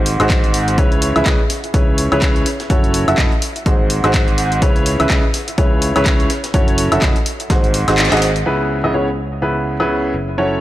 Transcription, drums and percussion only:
0.06 closed hi-hat medium
0.06 open hi-hat loud
0.20 closed hi-hat medium
0.20 high woodblock medium
0.30 kick loud
0.30 snare loud
0.30 clap loud
0.30 closed hi-hat medium
0.44 closed hi-hat soft
0.54 closed hi-hat medium
0.54 open hi-hat loud
0.68 closed hi-hat soft
0.78 kick loud
0.78 closed hi-hat medium
0.92 closed hi-hat soft
1.02 closed hi-hat medium
1.02 open hi-hat loud
1.16 closed hi-hat medium
1.16 high woodblock medium
1.26 kick loud
1.26 snare loud
1.26 clap loud
1.26 closed hi-hat medium
1.50 snare medium
1.50 closed hi-hat medium
1.50 open hi-hat loud
1.64 closed hi-hat soft
1.74 kick loud
1.74 closed hi-hat medium
1.98 closed hi-hat medium
1.98 open hi-hat loud
2.12 closed hi-hat medium
2.12 high woodblock medium
2.22 kick loud
2.22 snare loud
2.22 clap loud
2.22 closed hi-hat medium
2.36 closed hi-hat soft
2.46 snare soft
2.46 closed hi-hat medium
2.46 open hi-hat loud
2.60 snare medium
2.60 closed hi-hat soft
2.70 kick loud
2.70 closed hi-hat medium
2.84 closed hi-hat soft
2.94 closed hi-hat medium
2.94 open hi-hat loud
3.08 closed hi-hat soft
3.08 closed hi-hat medium
3.08 high woodblock medium
3.18 kick loud
3.18 snare loud
3.18 clap loud
3.18 closed hi-hat medium
3.32 closed hi-hat soft
3.42 closed hi-hat medium
3.42 open hi-hat loud
3.56 closed hi-hat soft
3.66 kick loud
3.66 closed hi-hat medium
3.90 closed hi-hat medium
3.90 open hi-hat loud
4.04 closed hi-hat medium
4.04 high woodblock medium
4.14 kick loud
4.14 snare loud
4.14 clap loud
4.14 closed hi-hat medium
4.28 closed hi-hat soft
4.38 closed hi-hat medium
4.38 open hi-hat loud
4.52 closed hi-hat medium
4.62 kick loud
4.62 closed hi-hat medium
4.76 closed hi-hat soft
4.86 closed hi-hat medium
4.86 open hi-hat loud
5.00 closed hi-hat medium
5.00 high woodblock medium
5.10 kick loud
5.10 snare loud
5.10 clap loud
5.10 closed hi-hat medium
5.34 snare medium
5.34 closed hi-hat medium
5.34 open hi-hat loud
5.48 closed hi-hat medium
5.58 kick loud
5.58 closed hi-hat medium
5.82 closed hi-hat medium
5.82 open hi-hat medium
5.96 closed hi-hat medium
5.96 high woodblock medium
6.06 kick loud
6.06 snare loud
6.06 clap loud
6.06 closed hi-hat medium
6.20 closed hi-hat soft
6.30 snare soft
6.30 closed hi-hat medium
6.30 open hi-hat loud
6.44 snare medium
6.44 closed hi-hat medium
6.54 kick loud
6.54 closed hi-hat medium
6.68 closed hi-hat soft
6.78 closed hi-hat medium
6.78 open hi-hat loud
6.92 closed hi-hat medium
6.92 closed hi-hat soft
6.92 high woodblock medium
7.02 kick loud
7.02 snare loud
7.02 clap loud
7.02 closed hi-hat medium
7.16 closed hi-hat soft
7.26 closed hi-hat medium
7.26 open hi-hat loud
7.40 closed hi-hat medium
7.50 kick loud
7.50 snare loud
7.50 closed hi-hat medium
7.64 closed hi-hat soft
7.74 snare soft
7.74 closed hi-hat medium
7.74 open hi-hat loud
7.88 snare loud
7.88 closed hi-hat medium
7.88 high woodblock medium
7.98 snare medium
7.98 clap loud
7.98 closed hi-hat medium
8.05 snare medium
8.05 closed hi-hat medium
8.12 snare medium
8.12 closed hi-hat soft
8.12 closed hi-hat medium
8.17 snare medium
8.17 closed hi-hat medium
8.22 snare loud
8.22 closed hi-hat medium
8.22 open hi-hat loud
8.36 closed hi-hat medium
8.84 high woodblock medium
9.80 high woodblock medium

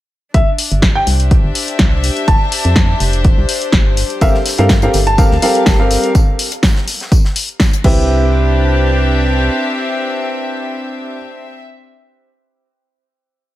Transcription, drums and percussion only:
0.34 kick loud
0.34 closed hi-hat soft
0.58 open hi-hat loud
0.71 closed hi-hat medium
0.82 kick loud
0.82 snare loud
0.82 closed hi-hat soft
1.07 open hi-hat medium
1.20 closed hi-hat medium
1.31 kick loud
1.31 closed hi-hat soft
1.55 open hi-hat medium
1.68 closed hi-hat medium
1.79 kick loud
1.79 snare loud
1.79 closed hi-hat medium
2.04 open hi-hat medium
2.17 closed hi-hat medium
2.28 kick loud
2.28 closed hi-hat soft
2.52 open hi-hat loud
2.65 closed hi-hat medium
2.76 kick loud
2.76 snare loud
2.76 closed hi-hat soft
3.00 open hi-hat medium
3.13 closed hi-hat medium
3.24 kick loud
3.24 closed hi-hat soft
3.49 open hi-hat loud
3.62 closed hi-hat medium
3.72 kick loud
3.72 snare loud
3.72 closed hi-hat soft
3.97 open hi-hat medium
4.10 closed hi-hat medium
4.21 kick loud
4.21 closed hi-hat soft
4.21 tambourine medium
4.34 snare soft
4.46 snare medium
4.46 open hi-hat loud
4.46 tambourine medium
4.58 closed hi-hat medium
4.69 kick loud
4.69 snare loud
4.69 closed hi-hat soft
4.69 tambourine medium
4.82 closed hi-hat soft
4.93 open hi-hat medium
4.93 tambourine medium
5.07 closed hi-hat medium
5.18 kick loud
5.18 closed hi-hat soft
5.18 tambourine medium
5.31 snare soft
5.42 open hi-hat loud
5.42 tambourine medium
5.55 closed hi-hat medium
5.66 kick loud
5.66 snare loud
5.66 closed hi-hat soft
5.66 tambourine medium
5.91 open hi-hat loud
5.91 tambourine medium
6.04 closed hi-hat medium
6.15 kick loud
6.15 closed hi-hat soft
6.15 tambourine medium
6.39 open hi-hat loud
6.39 tambourine medium
6.52 closed hi-hat soft
6.52 closed hi-hat medium
6.63 kick loud
6.63 snare loud
6.63 closed hi-hat soft
6.63 tambourine medium
6.76 snare medium
6.88 open hi-hat medium
6.88 tambourine medium
7.00 snare medium
7.00 closed hi-hat medium
7.12 kick loud
7.12 closed hi-hat soft
7.12 tambourine medium
7.25 snare soft
7.36 open hi-hat loud
7.36 tambourine medium
7.49 closed hi-hat medium
7.60 kick loud
7.60 snare loud
7.60 closed hi-hat soft
7.60 tambourine medium
7.73 closed hi-hat soft
7.84 kick loud
7.84 crash medium

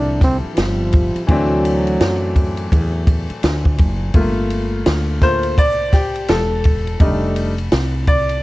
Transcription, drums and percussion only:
0.21 kick medium
0.21 snare soft
0.21 ride medium
0.57 snare loud
0.57 hi-hat pedal soft
0.57 ride medium
0.93 kick medium
0.93 ride medium
1.16 ride soft
1.28 kick loud
1.28 ride medium
1.65 ride medium
1.87 ride soft
2.01 snare loud
2.01 hi-hat pedal medium
2.01 ride medium
2.36 kick medium
2.36 ride medium
2.57 ride soft
2.72 kick medium
2.72 ride medium
3.07 kick medium
3.07 ride medium
3.30 ride soft
3.43 snare loud
3.43 hi-hat pedal medium
3.43 ride medium
3.65 kick medium
3.78 kick medium
3.78 ride medium
4.14 kick loud
4.14 ride medium
4.50 ride medium
4.86 snare loud
4.86 hi-hat pedal medium
4.86 ride medium
5.22 kick medium
5.22 snare soft
5.22 ride medium
5.43 ride soft
5.58 kick medium
5.58 ride medium
5.93 kick medium
5.93 snare soft
5.93 ride medium
6.16 ride soft
6.28 snare loud
6.28 hi-hat pedal medium
6.28 ride medium
6.64 kick medium
6.64 ride medium
6.87 ride soft
7.00 kick loud
7.00 ride medium
7.36 ride medium
7.58 ride soft
7.72 snare loud
7.72 hi-hat pedal medium
7.72 ride medium
8.07 kick medium
8.07 ride medium
8.29 ride soft

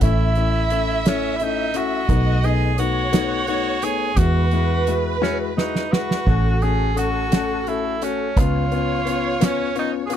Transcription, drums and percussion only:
0.01 kick loud
0.01 closed hi-hat medium
0.35 closed hi-hat soft
0.70 closed hi-hat medium
1.05 snare loud
1.05 closed hi-hat medium
1.40 closed hi-hat medium
1.74 closed hi-hat medium
2.09 kick loud
2.09 closed hi-hat medium
2.44 closed hi-hat soft
2.78 closed hi-hat medium
3.13 snare loud
3.13 closed hi-hat loud
3.47 closed hi-hat medium
3.82 closed hi-hat medium
4.17 kick loud
4.17 closed hi-hat medium
4.51 closed hi-hat soft
4.87 closed hi-hat medium
5.23 snare medium
5.58 snare medium
5.75 snare medium
5.93 snare loud
6.11 snare medium
6.27 kick loud
6.27 splash medium
6.62 closed hi-hat soft
6.97 closed hi-hat medium
7.32 snare loud
7.32 closed hi-hat medium
7.67 closed hi-hat medium
8.02 closed hi-hat medium
8.37 kick loud
8.37 closed hi-hat medium
8.72 closed hi-hat soft
9.07 closed hi-hat medium
9.41 snare loud
9.41 closed hi-hat loud
9.76 closed hi-hat medium
10.10 closed hi-hat medium

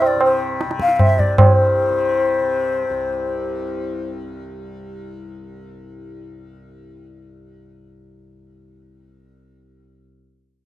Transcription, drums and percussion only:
0.02 tabla na medium
0.21 tabla na medium
0.61 tabla te medium
0.71 tabla te medium
0.79 tabla ke medium
0.89 tabla te medium
0.99 tabla na medium
0.99 tabla ge medium
1.19 tabla ge medium
1.38 tabla na loud
1.38 tabla ge loud

